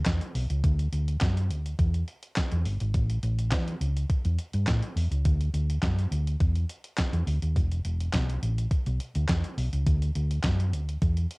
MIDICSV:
0, 0, Header, 1, 3, 480
1, 0, Start_track
1, 0, Tempo, 576923
1, 529, Time_signature, 4, 2, 24, 8
1, 9469, End_track
2, 0, Start_track
2, 0, Title_t, "Fingered electric bass"
2, 0, Program_c, 0, 33
2, 52, Note_on_c, 0, 40, 103
2, 152, Note_off_c, 0, 40, 0
2, 291, Note_on_c, 0, 35, 92
2, 391, Note_off_c, 0, 35, 0
2, 416, Note_on_c, 0, 37, 86
2, 506, Note_off_c, 0, 37, 0
2, 531, Note_on_c, 0, 38, 111
2, 721, Note_off_c, 0, 38, 0
2, 769, Note_on_c, 0, 38, 88
2, 960, Note_off_c, 0, 38, 0
2, 1009, Note_on_c, 0, 42, 92
2, 1252, Note_off_c, 0, 42, 0
2, 1252, Note_on_c, 0, 38, 91
2, 1441, Note_off_c, 0, 38, 0
2, 1489, Note_on_c, 0, 40, 101
2, 1679, Note_off_c, 0, 40, 0
2, 2099, Note_on_c, 0, 40, 88
2, 2187, Note_off_c, 0, 40, 0
2, 2208, Note_on_c, 0, 31, 89
2, 2310, Note_off_c, 0, 31, 0
2, 2338, Note_on_c, 0, 32, 94
2, 2427, Note_off_c, 0, 32, 0
2, 2448, Note_on_c, 0, 33, 102
2, 2639, Note_off_c, 0, 33, 0
2, 2687, Note_on_c, 0, 33, 97
2, 2927, Note_off_c, 0, 33, 0
2, 2927, Note_on_c, 0, 40, 84
2, 3118, Note_off_c, 0, 40, 0
2, 3166, Note_on_c, 0, 37, 81
2, 3358, Note_off_c, 0, 37, 0
2, 3536, Note_on_c, 0, 40, 90
2, 3626, Note_off_c, 0, 40, 0
2, 3776, Note_on_c, 0, 43, 97
2, 3865, Note_off_c, 0, 43, 0
2, 3891, Note_on_c, 0, 45, 92
2, 3991, Note_off_c, 0, 45, 0
2, 4126, Note_on_c, 0, 40, 79
2, 4228, Note_off_c, 0, 40, 0
2, 4252, Note_on_c, 0, 37, 95
2, 4343, Note_off_c, 0, 37, 0
2, 4369, Note_on_c, 0, 38, 109
2, 4560, Note_off_c, 0, 38, 0
2, 4605, Note_on_c, 0, 38, 93
2, 4797, Note_off_c, 0, 38, 0
2, 4847, Note_on_c, 0, 42, 91
2, 5038, Note_off_c, 0, 42, 0
2, 5086, Note_on_c, 0, 38, 87
2, 5278, Note_off_c, 0, 38, 0
2, 5328, Note_on_c, 0, 40, 102
2, 5519, Note_off_c, 0, 40, 0
2, 5932, Note_on_c, 0, 40, 96
2, 6023, Note_off_c, 0, 40, 0
2, 6047, Note_on_c, 0, 38, 97
2, 6149, Note_off_c, 0, 38, 0
2, 6175, Note_on_c, 0, 39, 84
2, 6291, Note_on_c, 0, 28, 110
2, 6303, Note_off_c, 0, 39, 0
2, 6480, Note_off_c, 0, 28, 0
2, 6529, Note_on_c, 0, 28, 88
2, 6720, Note_off_c, 0, 28, 0
2, 6769, Note_on_c, 0, 35, 91
2, 6959, Note_off_c, 0, 35, 0
2, 7010, Note_on_c, 0, 33, 84
2, 7200, Note_off_c, 0, 33, 0
2, 7378, Note_on_c, 0, 35, 88
2, 7467, Note_off_c, 0, 35, 0
2, 7618, Note_on_c, 0, 38, 99
2, 7707, Note_off_c, 0, 38, 0
2, 7731, Note_on_c, 0, 40, 101
2, 7831, Note_off_c, 0, 40, 0
2, 7968, Note_on_c, 0, 35, 93
2, 8069, Note_off_c, 0, 35, 0
2, 8096, Note_on_c, 0, 37, 81
2, 8186, Note_off_c, 0, 37, 0
2, 8209, Note_on_c, 0, 38, 111
2, 8399, Note_off_c, 0, 38, 0
2, 8449, Note_on_c, 0, 38, 96
2, 8639, Note_off_c, 0, 38, 0
2, 8686, Note_on_c, 0, 42, 97
2, 8927, Note_off_c, 0, 42, 0
2, 8927, Note_on_c, 0, 38, 89
2, 9118, Note_off_c, 0, 38, 0
2, 9167, Note_on_c, 0, 40, 100
2, 9358, Note_off_c, 0, 40, 0
2, 9469, End_track
3, 0, Start_track
3, 0, Title_t, "Drums"
3, 47, Note_on_c, 9, 39, 89
3, 50, Note_on_c, 9, 42, 93
3, 53, Note_on_c, 9, 36, 93
3, 54, Note_on_c, 9, 38, 116
3, 130, Note_off_c, 9, 39, 0
3, 133, Note_off_c, 9, 42, 0
3, 136, Note_off_c, 9, 36, 0
3, 137, Note_off_c, 9, 38, 0
3, 177, Note_on_c, 9, 42, 53
3, 260, Note_off_c, 9, 42, 0
3, 293, Note_on_c, 9, 46, 67
3, 376, Note_off_c, 9, 46, 0
3, 416, Note_on_c, 9, 42, 55
3, 499, Note_off_c, 9, 42, 0
3, 531, Note_on_c, 9, 36, 109
3, 531, Note_on_c, 9, 42, 98
3, 614, Note_off_c, 9, 42, 0
3, 615, Note_off_c, 9, 36, 0
3, 659, Note_on_c, 9, 42, 51
3, 742, Note_off_c, 9, 42, 0
3, 771, Note_on_c, 9, 42, 68
3, 854, Note_off_c, 9, 42, 0
3, 899, Note_on_c, 9, 42, 55
3, 982, Note_off_c, 9, 42, 0
3, 1005, Note_on_c, 9, 39, 88
3, 1008, Note_on_c, 9, 42, 86
3, 1009, Note_on_c, 9, 36, 114
3, 1012, Note_on_c, 9, 38, 108
3, 1088, Note_off_c, 9, 39, 0
3, 1092, Note_off_c, 9, 36, 0
3, 1092, Note_off_c, 9, 42, 0
3, 1096, Note_off_c, 9, 38, 0
3, 1140, Note_on_c, 9, 42, 56
3, 1223, Note_off_c, 9, 42, 0
3, 1252, Note_on_c, 9, 42, 76
3, 1336, Note_off_c, 9, 42, 0
3, 1379, Note_on_c, 9, 42, 50
3, 1462, Note_off_c, 9, 42, 0
3, 1489, Note_on_c, 9, 36, 104
3, 1490, Note_on_c, 9, 42, 81
3, 1572, Note_off_c, 9, 36, 0
3, 1573, Note_off_c, 9, 42, 0
3, 1616, Note_on_c, 9, 42, 47
3, 1699, Note_off_c, 9, 42, 0
3, 1729, Note_on_c, 9, 42, 71
3, 1812, Note_off_c, 9, 42, 0
3, 1853, Note_on_c, 9, 42, 51
3, 1936, Note_off_c, 9, 42, 0
3, 1965, Note_on_c, 9, 39, 99
3, 1968, Note_on_c, 9, 42, 99
3, 1972, Note_on_c, 9, 36, 100
3, 1972, Note_on_c, 9, 38, 124
3, 2048, Note_off_c, 9, 39, 0
3, 2051, Note_off_c, 9, 42, 0
3, 2055, Note_off_c, 9, 36, 0
3, 2056, Note_off_c, 9, 38, 0
3, 2094, Note_on_c, 9, 42, 50
3, 2177, Note_off_c, 9, 42, 0
3, 2209, Note_on_c, 9, 46, 65
3, 2293, Note_off_c, 9, 46, 0
3, 2333, Note_on_c, 9, 42, 53
3, 2416, Note_off_c, 9, 42, 0
3, 2448, Note_on_c, 9, 42, 102
3, 2449, Note_on_c, 9, 36, 102
3, 2531, Note_off_c, 9, 42, 0
3, 2533, Note_off_c, 9, 36, 0
3, 2577, Note_on_c, 9, 42, 52
3, 2660, Note_off_c, 9, 42, 0
3, 2687, Note_on_c, 9, 42, 69
3, 2770, Note_off_c, 9, 42, 0
3, 2817, Note_on_c, 9, 42, 55
3, 2900, Note_off_c, 9, 42, 0
3, 2924, Note_on_c, 9, 39, 90
3, 2927, Note_on_c, 9, 42, 94
3, 2928, Note_on_c, 9, 36, 113
3, 2931, Note_on_c, 9, 38, 113
3, 3007, Note_off_c, 9, 39, 0
3, 3011, Note_off_c, 9, 36, 0
3, 3011, Note_off_c, 9, 42, 0
3, 3014, Note_off_c, 9, 38, 0
3, 3059, Note_on_c, 9, 42, 57
3, 3142, Note_off_c, 9, 42, 0
3, 3171, Note_on_c, 9, 42, 80
3, 3255, Note_off_c, 9, 42, 0
3, 3299, Note_on_c, 9, 42, 57
3, 3382, Note_off_c, 9, 42, 0
3, 3407, Note_on_c, 9, 36, 116
3, 3408, Note_on_c, 9, 42, 81
3, 3491, Note_off_c, 9, 36, 0
3, 3491, Note_off_c, 9, 42, 0
3, 3533, Note_on_c, 9, 42, 51
3, 3617, Note_off_c, 9, 42, 0
3, 3648, Note_on_c, 9, 42, 70
3, 3731, Note_off_c, 9, 42, 0
3, 3772, Note_on_c, 9, 42, 54
3, 3855, Note_off_c, 9, 42, 0
3, 3885, Note_on_c, 9, 39, 94
3, 3888, Note_on_c, 9, 42, 96
3, 3892, Note_on_c, 9, 36, 99
3, 3892, Note_on_c, 9, 38, 120
3, 3968, Note_off_c, 9, 39, 0
3, 3971, Note_off_c, 9, 42, 0
3, 3975, Note_off_c, 9, 36, 0
3, 3975, Note_off_c, 9, 38, 0
3, 4014, Note_on_c, 9, 42, 52
3, 4097, Note_off_c, 9, 42, 0
3, 4133, Note_on_c, 9, 46, 72
3, 4216, Note_off_c, 9, 46, 0
3, 4256, Note_on_c, 9, 42, 55
3, 4339, Note_off_c, 9, 42, 0
3, 4368, Note_on_c, 9, 42, 108
3, 4370, Note_on_c, 9, 36, 105
3, 4451, Note_off_c, 9, 42, 0
3, 4453, Note_off_c, 9, 36, 0
3, 4497, Note_on_c, 9, 42, 51
3, 4581, Note_off_c, 9, 42, 0
3, 4609, Note_on_c, 9, 42, 68
3, 4692, Note_off_c, 9, 42, 0
3, 4740, Note_on_c, 9, 42, 60
3, 4824, Note_off_c, 9, 42, 0
3, 4848, Note_on_c, 9, 39, 92
3, 4849, Note_on_c, 9, 36, 122
3, 4851, Note_on_c, 9, 42, 94
3, 4855, Note_on_c, 9, 38, 109
3, 4931, Note_off_c, 9, 39, 0
3, 4932, Note_off_c, 9, 36, 0
3, 4934, Note_off_c, 9, 42, 0
3, 4938, Note_off_c, 9, 38, 0
3, 4981, Note_on_c, 9, 42, 57
3, 5064, Note_off_c, 9, 42, 0
3, 5092, Note_on_c, 9, 42, 80
3, 5175, Note_off_c, 9, 42, 0
3, 5219, Note_on_c, 9, 42, 56
3, 5302, Note_off_c, 9, 42, 0
3, 5328, Note_on_c, 9, 36, 116
3, 5328, Note_on_c, 9, 42, 87
3, 5411, Note_off_c, 9, 36, 0
3, 5411, Note_off_c, 9, 42, 0
3, 5453, Note_on_c, 9, 42, 47
3, 5536, Note_off_c, 9, 42, 0
3, 5569, Note_on_c, 9, 42, 76
3, 5653, Note_off_c, 9, 42, 0
3, 5692, Note_on_c, 9, 42, 53
3, 5775, Note_off_c, 9, 42, 0
3, 5805, Note_on_c, 9, 39, 96
3, 5807, Note_on_c, 9, 42, 98
3, 5812, Note_on_c, 9, 36, 98
3, 5812, Note_on_c, 9, 38, 117
3, 5888, Note_off_c, 9, 39, 0
3, 5890, Note_off_c, 9, 42, 0
3, 5895, Note_off_c, 9, 36, 0
3, 5895, Note_off_c, 9, 38, 0
3, 5935, Note_on_c, 9, 42, 54
3, 6018, Note_off_c, 9, 42, 0
3, 6051, Note_on_c, 9, 46, 69
3, 6135, Note_off_c, 9, 46, 0
3, 6176, Note_on_c, 9, 42, 54
3, 6259, Note_off_c, 9, 42, 0
3, 6290, Note_on_c, 9, 36, 101
3, 6290, Note_on_c, 9, 42, 108
3, 6373, Note_off_c, 9, 36, 0
3, 6374, Note_off_c, 9, 42, 0
3, 6419, Note_on_c, 9, 42, 50
3, 6502, Note_off_c, 9, 42, 0
3, 6529, Note_on_c, 9, 42, 67
3, 6612, Note_off_c, 9, 42, 0
3, 6659, Note_on_c, 9, 42, 58
3, 6743, Note_off_c, 9, 42, 0
3, 6766, Note_on_c, 9, 39, 94
3, 6768, Note_on_c, 9, 36, 116
3, 6770, Note_on_c, 9, 42, 86
3, 6773, Note_on_c, 9, 38, 112
3, 6850, Note_off_c, 9, 39, 0
3, 6852, Note_off_c, 9, 36, 0
3, 6853, Note_off_c, 9, 42, 0
3, 6857, Note_off_c, 9, 38, 0
3, 6902, Note_on_c, 9, 42, 56
3, 6985, Note_off_c, 9, 42, 0
3, 7012, Note_on_c, 9, 42, 77
3, 7095, Note_off_c, 9, 42, 0
3, 7140, Note_on_c, 9, 42, 56
3, 7223, Note_off_c, 9, 42, 0
3, 7248, Note_on_c, 9, 36, 113
3, 7248, Note_on_c, 9, 42, 79
3, 7331, Note_off_c, 9, 36, 0
3, 7332, Note_off_c, 9, 42, 0
3, 7375, Note_on_c, 9, 42, 46
3, 7458, Note_off_c, 9, 42, 0
3, 7490, Note_on_c, 9, 42, 72
3, 7573, Note_off_c, 9, 42, 0
3, 7614, Note_on_c, 9, 42, 55
3, 7697, Note_off_c, 9, 42, 0
3, 7727, Note_on_c, 9, 39, 93
3, 7730, Note_on_c, 9, 42, 95
3, 7732, Note_on_c, 9, 36, 101
3, 7734, Note_on_c, 9, 38, 121
3, 7810, Note_off_c, 9, 39, 0
3, 7813, Note_off_c, 9, 42, 0
3, 7816, Note_off_c, 9, 36, 0
3, 7817, Note_off_c, 9, 38, 0
3, 7856, Note_on_c, 9, 42, 54
3, 7939, Note_off_c, 9, 42, 0
3, 7972, Note_on_c, 9, 46, 65
3, 8055, Note_off_c, 9, 46, 0
3, 8096, Note_on_c, 9, 42, 54
3, 8180, Note_off_c, 9, 42, 0
3, 8210, Note_on_c, 9, 36, 105
3, 8210, Note_on_c, 9, 42, 106
3, 8293, Note_off_c, 9, 36, 0
3, 8293, Note_off_c, 9, 42, 0
3, 8338, Note_on_c, 9, 42, 52
3, 8421, Note_off_c, 9, 42, 0
3, 8449, Note_on_c, 9, 42, 71
3, 8532, Note_off_c, 9, 42, 0
3, 8577, Note_on_c, 9, 42, 59
3, 8660, Note_off_c, 9, 42, 0
3, 8683, Note_on_c, 9, 39, 90
3, 8686, Note_on_c, 9, 42, 88
3, 8687, Note_on_c, 9, 36, 110
3, 8690, Note_on_c, 9, 38, 111
3, 8766, Note_off_c, 9, 39, 0
3, 8769, Note_off_c, 9, 42, 0
3, 8770, Note_off_c, 9, 36, 0
3, 8773, Note_off_c, 9, 38, 0
3, 8819, Note_on_c, 9, 42, 60
3, 8902, Note_off_c, 9, 42, 0
3, 8930, Note_on_c, 9, 42, 76
3, 9013, Note_off_c, 9, 42, 0
3, 9058, Note_on_c, 9, 42, 54
3, 9141, Note_off_c, 9, 42, 0
3, 9167, Note_on_c, 9, 36, 107
3, 9167, Note_on_c, 9, 42, 81
3, 9250, Note_off_c, 9, 36, 0
3, 9250, Note_off_c, 9, 42, 0
3, 9293, Note_on_c, 9, 42, 48
3, 9376, Note_off_c, 9, 42, 0
3, 9408, Note_on_c, 9, 42, 74
3, 9469, Note_off_c, 9, 42, 0
3, 9469, End_track
0, 0, End_of_file